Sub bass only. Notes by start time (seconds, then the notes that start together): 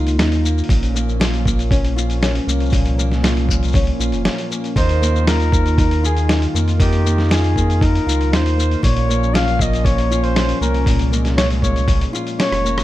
Already playing: C#2
0.18 D#2
0.69 A#1
2.47 C2
3.99 A#1
4.12 F1
4.76 D#2
6.54 F2
8.06 C#2
8.32 D#2
8.83 A#1
10.61 C2
12.51 F1